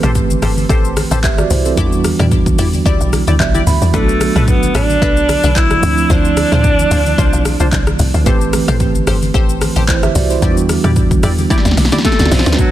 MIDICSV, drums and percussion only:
0, 0, Header, 1, 2, 480
1, 0, Start_track
1, 0, Tempo, 540541
1, 1576, Time_signature, 4, 2, 24, 8
1, 11289, End_track
2, 0, Start_track
2, 0, Title_t, "Drums"
2, 28, Note_on_c, 9, 45, 93
2, 29, Note_on_c, 9, 37, 92
2, 29, Note_on_c, 9, 82, 58
2, 117, Note_off_c, 9, 45, 0
2, 118, Note_off_c, 9, 37, 0
2, 118, Note_off_c, 9, 82, 0
2, 134, Note_on_c, 9, 82, 66
2, 136, Note_on_c, 9, 36, 84
2, 138, Note_on_c, 9, 64, 65
2, 223, Note_off_c, 9, 82, 0
2, 224, Note_off_c, 9, 36, 0
2, 226, Note_off_c, 9, 64, 0
2, 268, Note_on_c, 9, 63, 70
2, 271, Note_on_c, 9, 82, 62
2, 357, Note_off_c, 9, 63, 0
2, 359, Note_off_c, 9, 82, 0
2, 374, Note_on_c, 9, 64, 75
2, 377, Note_on_c, 9, 46, 52
2, 377, Note_on_c, 9, 82, 90
2, 378, Note_on_c, 9, 37, 106
2, 463, Note_off_c, 9, 64, 0
2, 466, Note_off_c, 9, 46, 0
2, 466, Note_off_c, 9, 82, 0
2, 467, Note_off_c, 9, 37, 0
2, 507, Note_on_c, 9, 63, 72
2, 511, Note_on_c, 9, 82, 54
2, 596, Note_off_c, 9, 63, 0
2, 600, Note_off_c, 9, 82, 0
2, 617, Note_on_c, 9, 36, 121
2, 622, Note_on_c, 9, 82, 77
2, 706, Note_off_c, 9, 36, 0
2, 711, Note_off_c, 9, 82, 0
2, 752, Note_on_c, 9, 82, 60
2, 841, Note_off_c, 9, 82, 0
2, 855, Note_on_c, 9, 63, 73
2, 860, Note_on_c, 9, 37, 96
2, 860, Note_on_c, 9, 46, 52
2, 860, Note_on_c, 9, 82, 89
2, 943, Note_off_c, 9, 63, 0
2, 948, Note_off_c, 9, 46, 0
2, 948, Note_off_c, 9, 82, 0
2, 949, Note_off_c, 9, 37, 0
2, 986, Note_on_c, 9, 63, 75
2, 988, Note_on_c, 9, 82, 65
2, 1074, Note_off_c, 9, 63, 0
2, 1077, Note_off_c, 9, 82, 0
2, 1097, Note_on_c, 9, 36, 87
2, 1099, Note_on_c, 9, 82, 74
2, 1101, Note_on_c, 9, 39, 98
2, 1186, Note_off_c, 9, 36, 0
2, 1188, Note_off_c, 9, 82, 0
2, 1190, Note_off_c, 9, 39, 0
2, 1226, Note_on_c, 9, 63, 69
2, 1227, Note_on_c, 9, 82, 48
2, 1230, Note_on_c, 9, 37, 89
2, 1315, Note_off_c, 9, 63, 0
2, 1316, Note_off_c, 9, 82, 0
2, 1319, Note_off_c, 9, 37, 0
2, 1336, Note_on_c, 9, 46, 55
2, 1336, Note_on_c, 9, 63, 58
2, 1336, Note_on_c, 9, 64, 80
2, 1336, Note_on_c, 9, 82, 95
2, 1425, Note_off_c, 9, 46, 0
2, 1425, Note_off_c, 9, 63, 0
2, 1425, Note_off_c, 9, 64, 0
2, 1425, Note_off_c, 9, 82, 0
2, 1468, Note_on_c, 9, 82, 56
2, 1557, Note_off_c, 9, 82, 0
2, 1573, Note_on_c, 9, 64, 86
2, 1576, Note_on_c, 9, 36, 126
2, 1576, Note_on_c, 9, 82, 85
2, 1662, Note_off_c, 9, 64, 0
2, 1665, Note_off_c, 9, 36, 0
2, 1665, Note_off_c, 9, 82, 0
2, 1709, Note_on_c, 9, 82, 58
2, 1798, Note_off_c, 9, 82, 0
2, 1814, Note_on_c, 9, 63, 62
2, 1815, Note_on_c, 9, 46, 56
2, 1815, Note_on_c, 9, 82, 97
2, 1816, Note_on_c, 9, 37, 101
2, 1903, Note_off_c, 9, 63, 0
2, 1904, Note_off_c, 9, 46, 0
2, 1904, Note_off_c, 9, 82, 0
2, 1905, Note_off_c, 9, 37, 0
2, 1949, Note_on_c, 9, 37, 89
2, 1949, Note_on_c, 9, 45, 96
2, 1950, Note_on_c, 9, 82, 60
2, 2038, Note_off_c, 9, 37, 0
2, 2038, Note_off_c, 9, 45, 0
2, 2038, Note_off_c, 9, 82, 0
2, 2054, Note_on_c, 9, 82, 70
2, 2056, Note_on_c, 9, 36, 90
2, 2057, Note_on_c, 9, 64, 61
2, 2143, Note_off_c, 9, 82, 0
2, 2145, Note_off_c, 9, 36, 0
2, 2145, Note_off_c, 9, 64, 0
2, 2187, Note_on_c, 9, 36, 94
2, 2187, Note_on_c, 9, 63, 70
2, 2190, Note_on_c, 9, 82, 62
2, 2275, Note_off_c, 9, 63, 0
2, 2276, Note_off_c, 9, 36, 0
2, 2279, Note_off_c, 9, 82, 0
2, 2294, Note_on_c, 9, 64, 77
2, 2296, Note_on_c, 9, 46, 52
2, 2296, Note_on_c, 9, 82, 90
2, 2383, Note_off_c, 9, 64, 0
2, 2385, Note_off_c, 9, 46, 0
2, 2385, Note_off_c, 9, 82, 0
2, 2428, Note_on_c, 9, 63, 72
2, 2429, Note_on_c, 9, 82, 52
2, 2517, Note_off_c, 9, 63, 0
2, 2518, Note_off_c, 9, 82, 0
2, 2537, Note_on_c, 9, 36, 123
2, 2541, Note_on_c, 9, 82, 79
2, 2626, Note_off_c, 9, 36, 0
2, 2630, Note_off_c, 9, 82, 0
2, 2671, Note_on_c, 9, 82, 62
2, 2760, Note_off_c, 9, 82, 0
2, 2776, Note_on_c, 9, 63, 74
2, 2779, Note_on_c, 9, 37, 95
2, 2779, Note_on_c, 9, 46, 51
2, 2779, Note_on_c, 9, 82, 91
2, 2865, Note_off_c, 9, 63, 0
2, 2868, Note_off_c, 9, 37, 0
2, 2868, Note_off_c, 9, 46, 0
2, 2868, Note_off_c, 9, 82, 0
2, 2908, Note_on_c, 9, 63, 72
2, 2908, Note_on_c, 9, 82, 63
2, 2996, Note_off_c, 9, 63, 0
2, 2997, Note_off_c, 9, 82, 0
2, 3017, Note_on_c, 9, 36, 87
2, 3020, Note_on_c, 9, 82, 71
2, 3022, Note_on_c, 9, 39, 94
2, 3106, Note_off_c, 9, 36, 0
2, 3109, Note_off_c, 9, 82, 0
2, 3111, Note_off_c, 9, 39, 0
2, 3147, Note_on_c, 9, 63, 65
2, 3150, Note_on_c, 9, 82, 49
2, 3236, Note_off_c, 9, 63, 0
2, 3238, Note_off_c, 9, 82, 0
2, 3256, Note_on_c, 9, 63, 55
2, 3256, Note_on_c, 9, 64, 80
2, 3259, Note_on_c, 9, 46, 56
2, 3259, Note_on_c, 9, 82, 94
2, 3344, Note_off_c, 9, 63, 0
2, 3344, Note_off_c, 9, 64, 0
2, 3348, Note_off_c, 9, 46, 0
2, 3348, Note_off_c, 9, 82, 0
2, 3391, Note_on_c, 9, 82, 56
2, 3480, Note_off_c, 9, 82, 0
2, 3493, Note_on_c, 9, 64, 84
2, 3497, Note_on_c, 9, 36, 123
2, 3498, Note_on_c, 9, 82, 87
2, 3582, Note_off_c, 9, 64, 0
2, 3586, Note_off_c, 9, 36, 0
2, 3587, Note_off_c, 9, 82, 0
2, 3631, Note_on_c, 9, 82, 58
2, 3720, Note_off_c, 9, 82, 0
2, 3733, Note_on_c, 9, 63, 67
2, 3737, Note_on_c, 9, 46, 56
2, 3737, Note_on_c, 9, 82, 101
2, 3738, Note_on_c, 9, 37, 102
2, 3822, Note_off_c, 9, 63, 0
2, 3826, Note_off_c, 9, 46, 0
2, 3826, Note_off_c, 9, 82, 0
2, 3827, Note_off_c, 9, 37, 0
2, 3870, Note_on_c, 9, 45, 92
2, 3871, Note_on_c, 9, 37, 86
2, 3871, Note_on_c, 9, 82, 59
2, 3959, Note_off_c, 9, 37, 0
2, 3959, Note_off_c, 9, 45, 0
2, 3960, Note_off_c, 9, 82, 0
2, 3975, Note_on_c, 9, 82, 69
2, 3976, Note_on_c, 9, 36, 91
2, 3977, Note_on_c, 9, 64, 66
2, 4064, Note_off_c, 9, 82, 0
2, 4065, Note_off_c, 9, 36, 0
2, 4065, Note_off_c, 9, 64, 0
2, 4109, Note_on_c, 9, 63, 69
2, 4111, Note_on_c, 9, 82, 65
2, 4198, Note_off_c, 9, 63, 0
2, 4200, Note_off_c, 9, 82, 0
2, 4215, Note_on_c, 9, 64, 73
2, 4216, Note_on_c, 9, 46, 52
2, 4216, Note_on_c, 9, 82, 89
2, 4217, Note_on_c, 9, 37, 106
2, 4304, Note_off_c, 9, 64, 0
2, 4305, Note_off_c, 9, 46, 0
2, 4305, Note_off_c, 9, 82, 0
2, 4306, Note_off_c, 9, 37, 0
2, 4349, Note_on_c, 9, 63, 73
2, 4350, Note_on_c, 9, 82, 52
2, 4437, Note_off_c, 9, 63, 0
2, 4439, Note_off_c, 9, 82, 0
2, 4457, Note_on_c, 9, 36, 117
2, 4460, Note_on_c, 9, 82, 79
2, 4545, Note_off_c, 9, 36, 0
2, 4549, Note_off_c, 9, 82, 0
2, 4590, Note_on_c, 9, 82, 59
2, 4678, Note_off_c, 9, 82, 0
2, 4696, Note_on_c, 9, 63, 77
2, 4698, Note_on_c, 9, 37, 95
2, 4698, Note_on_c, 9, 46, 51
2, 4698, Note_on_c, 9, 82, 92
2, 4785, Note_off_c, 9, 63, 0
2, 4787, Note_off_c, 9, 37, 0
2, 4787, Note_off_c, 9, 46, 0
2, 4787, Note_off_c, 9, 82, 0
2, 4826, Note_on_c, 9, 82, 61
2, 4828, Note_on_c, 9, 63, 73
2, 4915, Note_off_c, 9, 82, 0
2, 4917, Note_off_c, 9, 63, 0
2, 4937, Note_on_c, 9, 36, 90
2, 4938, Note_on_c, 9, 82, 71
2, 4940, Note_on_c, 9, 39, 93
2, 5026, Note_off_c, 9, 36, 0
2, 5027, Note_off_c, 9, 82, 0
2, 5029, Note_off_c, 9, 39, 0
2, 5066, Note_on_c, 9, 82, 49
2, 5068, Note_on_c, 9, 37, 93
2, 5068, Note_on_c, 9, 63, 65
2, 5155, Note_off_c, 9, 82, 0
2, 5157, Note_off_c, 9, 37, 0
2, 5157, Note_off_c, 9, 63, 0
2, 5177, Note_on_c, 9, 46, 58
2, 5177, Note_on_c, 9, 63, 58
2, 5177, Note_on_c, 9, 64, 80
2, 5177, Note_on_c, 9, 82, 96
2, 5265, Note_off_c, 9, 46, 0
2, 5265, Note_off_c, 9, 63, 0
2, 5265, Note_off_c, 9, 64, 0
2, 5265, Note_off_c, 9, 82, 0
2, 5308, Note_on_c, 9, 82, 56
2, 5397, Note_off_c, 9, 82, 0
2, 5412, Note_on_c, 9, 64, 82
2, 5416, Note_on_c, 9, 82, 83
2, 5417, Note_on_c, 9, 36, 121
2, 5501, Note_off_c, 9, 64, 0
2, 5505, Note_off_c, 9, 82, 0
2, 5506, Note_off_c, 9, 36, 0
2, 5549, Note_on_c, 9, 82, 57
2, 5637, Note_off_c, 9, 82, 0
2, 5655, Note_on_c, 9, 63, 63
2, 5656, Note_on_c, 9, 46, 57
2, 5656, Note_on_c, 9, 82, 95
2, 5657, Note_on_c, 9, 37, 102
2, 5744, Note_off_c, 9, 63, 0
2, 5745, Note_off_c, 9, 46, 0
2, 5745, Note_off_c, 9, 82, 0
2, 5746, Note_off_c, 9, 37, 0
2, 5790, Note_on_c, 9, 37, 91
2, 5790, Note_on_c, 9, 45, 91
2, 5790, Note_on_c, 9, 82, 59
2, 5878, Note_off_c, 9, 45, 0
2, 5879, Note_off_c, 9, 37, 0
2, 5879, Note_off_c, 9, 82, 0
2, 5896, Note_on_c, 9, 82, 68
2, 5897, Note_on_c, 9, 36, 89
2, 5898, Note_on_c, 9, 64, 67
2, 5985, Note_off_c, 9, 82, 0
2, 5986, Note_off_c, 9, 36, 0
2, 5986, Note_off_c, 9, 64, 0
2, 6029, Note_on_c, 9, 63, 70
2, 6031, Note_on_c, 9, 82, 65
2, 6118, Note_off_c, 9, 63, 0
2, 6120, Note_off_c, 9, 82, 0
2, 6137, Note_on_c, 9, 64, 78
2, 6138, Note_on_c, 9, 46, 53
2, 6138, Note_on_c, 9, 82, 95
2, 6225, Note_off_c, 9, 64, 0
2, 6227, Note_off_c, 9, 46, 0
2, 6227, Note_off_c, 9, 82, 0
2, 6269, Note_on_c, 9, 63, 72
2, 6271, Note_on_c, 9, 82, 53
2, 6358, Note_off_c, 9, 63, 0
2, 6360, Note_off_c, 9, 82, 0
2, 6378, Note_on_c, 9, 36, 123
2, 6382, Note_on_c, 9, 82, 77
2, 6466, Note_off_c, 9, 36, 0
2, 6470, Note_off_c, 9, 82, 0
2, 6511, Note_on_c, 9, 82, 60
2, 6599, Note_off_c, 9, 82, 0
2, 6616, Note_on_c, 9, 63, 76
2, 6619, Note_on_c, 9, 37, 98
2, 6619, Note_on_c, 9, 46, 52
2, 6619, Note_on_c, 9, 82, 94
2, 6705, Note_off_c, 9, 63, 0
2, 6708, Note_off_c, 9, 37, 0
2, 6708, Note_off_c, 9, 46, 0
2, 6708, Note_off_c, 9, 82, 0
2, 6747, Note_on_c, 9, 82, 60
2, 6750, Note_on_c, 9, 63, 72
2, 6836, Note_off_c, 9, 82, 0
2, 6839, Note_off_c, 9, 63, 0
2, 6858, Note_on_c, 9, 36, 87
2, 6860, Note_on_c, 9, 82, 73
2, 6861, Note_on_c, 9, 39, 93
2, 6947, Note_off_c, 9, 36, 0
2, 6948, Note_off_c, 9, 82, 0
2, 6950, Note_off_c, 9, 39, 0
2, 6987, Note_on_c, 9, 82, 50
2, 6990, Note_on_c, 9, 37, 90
2, 6991, Note_on_c, 9, 63, 63
2, 7076, Note_off_c, 9, 82, 0
2, 7079, Note_off_c, 9, 37, 0
2, 7080, Note_off_c, 9, 63, 0
2, 7097, Note_on_c, 9, 46, 53
2, 7097, Note_on_c, 9, 82, 96
2, 7099, Note_on_c, 9, 63, 57
2, 7099, Note_on_c, 9, 64, 84
2, 7186, Note_off_c, 9, 46, 0
2, 7186, Note_off_c, 9, 82, 0
2, 7187, Note_off_c, 9, 63, 0
2, 7187, Note_off_c, 9, 64, 0
2, 7229, Note_on_c, 9, 82, 55
2, 7318, Note_off_c, 9, 82, 0
2, 7336, Note_on_c, 9, 64, 84
2, 7337, Note_on_c, 9, 36, 120
2, 7337, Note_on_c, 9, 82, 86
2, 7425, Note_off_c, 9, 64, 0
2, 7426, Note_off_c, 9, 36, 0
2, 7426, Note_off_c, 9, 82, 0
2, 7470, Note_on_c, 9, 82, 57
2, 7558, Note_off_c, 9, 82, 0
2, 7576, Note_on_c, 9, 46, 57
2, 7576, Note_on_c, 9, 63, 63
2, 7576, Note_on_c, 9, 82, 99
2, 7577, Note_on_c, 9, 37, 102
2, 7665, Note_off_c, 9, 46, 0
2, 7665, Note_off_c, 9, 63, 0
2, 7665, Note_off_c, 9, 82, 0
2, 7666, Note_off_c, 9, 37, 0
2, 7709, Note_on_c, 9, 37, 91
2, 7709, Note_on_c, 9, 45, 93
2, 7709, Note_on_c, 9, 82, 61
2, 7798, Note_off_c, 9, 37, 0
2, 7798, Note_off_c, 9, 45, 0
2, 7798, Note_off_c, 9, 82, 0
2, 7814, Note_on_c, 9, 82, 68
2, 7816, Note_on_c, 9, 36, 87
2, 7818, Note_on_c, 9, 64, 67
2, 7903, Note_off_c, 9, 82, 0
2, 7905, Note_off_c, 9, 36, 0
2, 7907, Note_off_c, 9, 64, 0
2, 7949, Note_on_c, 9, 63, 71
2, 7950, Note_on_c, 9, 82, 65
2, 8037, Note_off_c, 9, 63, 0
2, 8039, Note_off_c, 9, 82, 0
2, 8055, Note_on_c, 9, 64, 77
2, 8056, Note_on_c, 9, 46, 52
2, 8056, Note_on_c, 9, 82, 91
2, 8057, Note_on_c, 9, 37, 106
2, 8144, Note_off_c, 9, 64, 0
2, 8145, Note_off_c, 9, 37, 0
2, 8145, Note_off_c, 9, 46, 0
2, 8145, Note_off_c, 9, 82, 0
2, 8189, Note_on_c, 9, 63, 71
2, 8190, Note_on_c, 9, 82, 53
2, 8277, Note_off_c, 9, 63, 0
2, 8278, Note_off_c, 9, 82, 0
2, 8296, Note_on_c, 9, 36, 120
2, 8300, Note_on_c, 9, 82, 77
2, 8385, Note_off_c, 9, 36, 0
2, 8388, Note_off_c, 9, 82, 0
2, 8429, Note_on_c, 9, 82, 58
2, 8518, Note_off_c, 9, 82, 0
2, 8536, Note_on_c, 9, 63, 75
2, 8538, Note_on_c, 9, 37, 97
2, 8538, Note_on_c, 9, 46, 54
2, 8538, Note_on_c, 9, 82, 90
2, 8625, Note_off_c, 9, 63, 0
2, 8626, Note_off_c, 9, 46, 0
2, 8626, Note_off_c, 9, 82, 0
2, 8627, Note_off_c, 9, 37, 0
2, 8666, Note_on_c, 9, 82, 64
2, 8668, Note_on_c, 9, 63, 76
2, 8755, Note_off_c, 9, 82, 0
2, 8757, Note_off_c, 9, 63, 0
2, 8776, Note_on_c, 9, 36, 87
2, 8778, Note_on_c, 9, 82, 75
2, 8780, Note_on_c, 9, 39, 96
2, 8865, Note_off_c, 9, 36, 0
2, 8867, Note_off_c, 9, 82, 0
2, 8868, Note_off_c, 9, 39, 0
2, 8906, Note_on_c, 9, 82, 49
2, 8909, Note_on_c, 9, 37, 92
2, 8909, Note_on_c, 9, 63, 68
2, 8995, Note_off_c, 9, 82, 0
2, 8997, Note_off_c, 9, 37, 0
2, 8998, Note_off_c, 9, 63, 0
2, 9016, Note_on_c, 9, 46, 57
2, 9016, Note_on_c, 9, 82, 98
2, 9017, Note_on_c, 9, 63, 58
2, 9017, Note_on_c, 9, 64, 78
2, 9105, Note_off_c, 9, 46, 0
2, 9105, Note_off_c, 9, 82, 0
2, 9106, Note_off_c, 9, 63, 0
2, 9106, Note_off_c, 9, 64, 0
2, 9148, Note_on_c, 9, 82, 56
2, 9237, Note_off_c, 9, 82, 0
2, 9254, Note_on_c, 9, 64, 81
2, 9256, Note_on_c, 9, 36, 122
2, 9256, Note_on_c, 9, 82, 84
2, 9343, Note_off_c, 9, 64, 0
2, 9345, Note_off_c, 9, 36, 0
2, 9345, Note_off_c, 9, 82, 0
2, 9388, Note_on_c, 9, 82, 59
2, 9477, Note_off_c, 9, 82, 0
2, 9494, Note_on_c, 9, 63, 64
2, 9495, Note_on_c, 9, 46, 55
2, 9495, Note_on_c, 9, 82, 95
2, 9496, Note_on_c, 9, 37, 104
2, 9583, Note_off_c, 9, 63, 0
2, 9584, Note_off_c, 9, 37, 0
2, 9584, Note_off_c, 9, 46, 0
2, 9584, Note_off_c, 9, 82, 0
2, 9627, Note_on_c, 9, 45, 89
2, 9628, Note_on_c, 9, 37, 91
2, 9628, Note_on_c, 9, 82, 60
2, 9716, Note_off_c, 9, 37, 0
2, 9716, Note_off_c, 9, 45, 0
2, 9717, Note_off_c, 9, 82, 0
2, 9732, Note_on_c, 9, 82, 67
2, 9735, Note_on_c, 9, 36, 89
2, 9735, Note_on_c, 9, 64, 63
2, 9821, Note_off_c, 9, 82, 0
2, 9823, Note_off_c, 9, 36, 0
2, 9823, Note_off_c, 9, 64, 0
2, 9866, Note_on_c, 9, 36, 94
2, 9867, Note_on_c, 9, 63, 71
2, 9867, Note_on_c, 9, 82, 64
2, 9954, Note_off_c, 9, 36, 0
2, 9956, Note_off_c, 9, 63, 0
2, 9956, Note_off_c, 9, 82, 0
2, 9973, Note_on_c, 9, 46, 55
2, 9973, Note_on_c, 9, 82, 90
2, 9974, Note_on_c, 9, 37, 109
2, 9974, Note_on_c, 9, 64, 74
2, 10062, Note_off_c, 9, 46, 0
2, 10062, Note_off_c, 9, 82, 0
2, 10063, Note_off_c, 9, 37, 0
2, 10063, Note_off_c, 9, 64, 0
2, 10108, Note_on_c, 9, 63, 71
2, 10108, Note_on_c, 9, 82, 52
2, 10197, Note_off_c, 9, 63, 0
2, 10197, Note_off_c, 9, 82, 0
2, 10215, Note_on_c, 9, 36, 124
2, 10215, Note_on_c, 9, 38, 63
2, 10219, Note_on_c, 9, 82, 77
2, 10280, Note_off_c, 9, 38, 0
2, 10280, Note_on_c, 9, 38, 59
2, 10304, Note_off_c, 9, 36, 0
2, 10308, Note_off_c, 9, 82, 0
2, 10347, Note_off_c, 9, 38, 0
2, 10347, Note_on_c, 9, 38, 73
2, 10348, Note_on_c, 9, 82, 59
2, 10401, Note_off_c, 9, 38, 0
2, 10401, Note_on_c, 9, 38, 64
2, 10436, Note_off_c, 9, 82, 0
2, 10455, Note_off_c, 9, 38, 0
2, 10455, Note_on_c, 9, 38, 77
2, 10456, Note_on_c, 9, 46, 52
2, 10456, Note_on_c, 9, 82, 85
2, 10457, Note_on_c, 9, 63, 72
2, 10522, Note_off_c, 9, 38, 0
2, 10522, Note_on_c, 9, 38, 68
2, 10545, Note_off_c, 9, 46, 0
2, 10545, Note_off_c, 9, 82, 0
2, 10546, Note_off_c, 9, 63, 0
2, 10585, Note_on_c, 9, 82, 59
2, 10588, Note_off_c, 9, 38, 0
2, 10588, Note_on_c, 9, 38, 86
2, 10591, Note_on_c, 9, 63, 75
2, 10642, Note_off_c, 9, 38, 0
2, 10642, Note_on_c, 9, 38, 76
2, 10674, Note_off_c, 9, 82, 0
2, 10680, Note_off_c, 9, 63, 0
2, 10696, Note_on_c, 9, 36, 86
2, 10697, Note_off_c, 9, 38, 0
2, 10697, Note_on_c, 9, 38, 92
2, 10698, Note_on_c, 9, 82, 74
2, 10762, Note_off_c, 9, 38, 0
2, 10762, Note_on_c, 9, 38, 82
2, 10785, Note_off_c, 9, 36, 0
2, 10787, Note_off_c, 9, 82, 0
2, 10827, Note_on_c, 9, 82, 49
2, 10829, Note_off_c, 9, 38, 0
2, 10829, Note_on_c, 9, 38, 96
2, 10831, Note_on_c, 9, 63, 68
2, 10883, Note_off_c, 9, 38, 0
2, 10883, Note_on_c, 9, 38, 82
2, 10916, Note_off_c, 9, 82, 0
2, 10920, Note_off_c, 9, 63, 0
2, 10936, Note_off_c, 9, 38, 0
2, 10936, Note_on_c, 9, 38, 97
2, 10936, Note_on_c, 9, 46, 57
2, 10936, Note_on_c, 9, 82, 95
2, 10938, Note_on_c, 9, 63, 59
2, 10938, Note_on_c, 9, 64, 80
2, 11002, Note_off_c, 9, 38, 0
2, 11002, Note_on_c, 9, 38, 84
2, 11025, Note_off_c, 9, 46, 0
2, 11025, Note_off_c, 9, 82, 0
2, 11027, Note_off_c, 9, 63, 0
2, 11027, Note_off_c, 9, 64, 0
2, 11067, Note_off_c, 9, 38, 0
2, 11067, Note_on_c, 9, 38, 111
2, 11067, Note_on_c, 9, 82, 55
2, 11122, Note_off_c, 9, 38, 0
2, 11122, Note_on_c, 9, 38, 104
2, 11155, Note_off_c, 9, 82, 0
2, 11176, Note_on_c, 9, 36, 115
2, 11176, Note_on_c, 9, 64, 80
2, 11176, Note_on_c, 9, 82, 82
2, 11211, Note_off_c, 9, 38, 0
2, 11264, Note_off_c, 9, 64, 0
2, 11265, Note_off_c, 9, 36, 0
2, 11265, Note_off_c, 9, 82, 0
2, 11289, End_track
0, 0, End_of_file